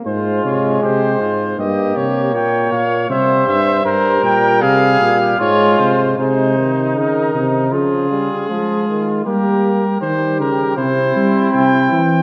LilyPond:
<<
  \new Staff \with { instrumentName = "Trumpet" } { \time 4/4 \key f \minor \tempo 4 = 79 c''8 des''8 c''4 ees''8 des''8 g''8 f''8 | e''8 e''8 c''8 g''8 f''4 des''8 c''8 | c''4 bes'4 aes'2 | bes'4 c''8 bes'8 c''4 g''4 | }
  \new Staff \with { instrumentName = "Flugelhorn" } { \time 4/4 \key f \minor f'4 g'8 f'8 g'4 des''4 | c''4 bes'4 aes'8. g'16 f'4 | ees'2 f'4 f'4 | g'4 g'4 e'2 | }
  \new Staff \with { instrumentName = "Trombone" } { \clef bass \time 4/4 \key f \minor aes2 bes2 | g4 g2 aes4 | aes8 ees4. f8 g8 f8 ees8 | bes4 g4 c'2 | }
  \new Staff \with { instrumentName = "Tuba" } { \clef bass \time 4/4 \key f \minor aes,8 c8 c8 aes,8 g,8 c8 bes,8 bes,8 | c8 g,8 g,8 bes,8 c8 bes,8 aes,8 c8 | c4 des8 c8 des4 aes4 | g4 ees8 des8 c8 g8 c8 e8 | }
>>